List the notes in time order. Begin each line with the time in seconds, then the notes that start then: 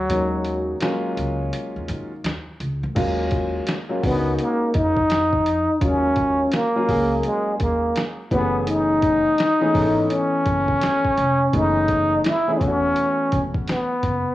Already playing: F#3
0.10 D#2 F#3 G#3 A#3 C#4 D#4, closed hi-hat
0.45 closed hi-hat
0.80 F#3 G#3 A#3 C#4 F4, snare, closed hi-hat
1.17 C#2, closed hi-hat
1.53 closed hi-hat
1.76 D#2
1.88 D#3, closed hi-hat
2.24 D#2, snare, closed hi-hat
2.60 C#2, closed hi-hat
2.83 D2
2.95 D#2 F#3 G#3 A#3 C#4 F4, kick, closed hi-hat, crash
3.31 kick, closed hi-hat
3.67 snare, closed hi-hat
3.89 F#3 G#3 A#3 C#4 F4
4.02 C#2 G#3 B3 C#4 D4 F#4 A#4, kick, open hi-hat
4.10 D#4
4.39 A#3, closed hi-hat
4.74 F2 D#4, kick, closed hi-hat
4.97 kick
5.10 snare, closed hi-hat
5.33 kick
5.46 closed hi-hat
5.81 D#2 F#3 G#3 A#3 C#4 F4, kick, closed hi-hat
6.16 kick, closed hi-hat
6.52 A#3, snare, closed hi-hat
6.75 F#3 G#3 A#3 C#4 F4
6.88 C#2 F#3 G#3 A#3 C#4 G#4, kick, open hi-hat
7.24 G#3, closed hi-hat
7.60 D#2 A#3, kick, closed hi-hat
7.96 snare, closed hi-hat
8.31 F#1 E3 A3 B3 C#4 G4, kick, closed hi-hat
8.38 G#4
8.67 D#4, closed hi-hat
9.02 kick, closed hi-hat
9.38 snare, closed hi-hat
9.61 E3 A3 B3 C#4 G#4
9.73 G#1 E3 A3 B3 C#4 G#4, kick, open hi-hat
9.80 A4
10.10 C#4, closed hi-hat
10.46 F#1, kick, closed hi-hat
10.68 kick
10.82 snare, closed hi-hat
11.05 kick
11.18 F1, closed hi-hat
11.53 F#1 E3 A3 B3 C#4 D#4 G#4, kick, closed hi-hat
11.88 kick, closed hi-hat
12.24 E4, snare, closed hi-hat
12.47 E3 A3 B3 C#4 G#4
12.57 E1 E3 A3 B3 C4 C#4 F4, kick
12.61 C#4, closed hi-hat
12.67 F#4
12.96 closed hi-hat
13.32 E1, kick, closed hi-hat
13.54 kick
13.67 B3, snare, closed hi-hat
14.03 F#1, kick, closed hi-hat